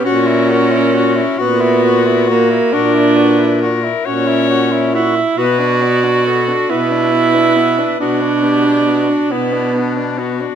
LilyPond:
<<
  \new Staff \with { instrumentName = "Clarinet" } { \time 12/8 \key b \minor \tempo 4. = 45 fis'8 ais'8 fis'8 fis'4. ais'8 b'8 ais'8 cis''4 r8 | b'8 d''8 a'8 b'4. fis'8 g'8 fis'8 e'8 d'8 fis'8 | }
  \new Staff \with { instrumentName = "Tenor saxophone" } { \time 12/8 \key b \minor fis'16 e'16 fis'16 e'16 fis'16 e'16 fis'16 e'16 fis'16 e'16 fis'16 e'16 fis'16 e'16 fis'16 e'16 fis'16 e'16 fis'16 e'16 fis'16 e'16 fis'16 e'16 | b16 d'16 b16 d'16 b16 d'16 b16 d'16 b16 d'16 b16 d'16 b16 d'16 b16 d'16 b16 d'16 b16 d'16 b16 d'16 b16 d'16 | }
  \new Staff \with { instrumentName = "Alto saxophone" } { \time 12/8 \key b \minor cis'4. b4 ais8 d'4 r8 cis'4 e'8 | fis'4. e'4. d'4. b4 r8 | }
  \new Staff \with { instrumentName = "Baritone saxophone" } { \clef bass \time 12/8 \key b \minor ais,4. ais,4. ais,4. ais,4. | b,4. b,4. b,4. b,4. | }
>>